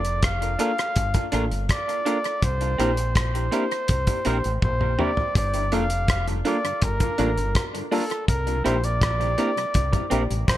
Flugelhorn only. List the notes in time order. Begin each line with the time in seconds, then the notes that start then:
Already playing: D5
0.24 F5
0.61 F5
1.71 D5
2.44 C5
3.17 C5
4.64 C5
5.01 D5
5.37 D5
5.74 F5
6.11 F5
6.47 D5
6.83 A#4
7.93 A4
8.29 A#4
8.65 C5
8.84 D5
10.48 C5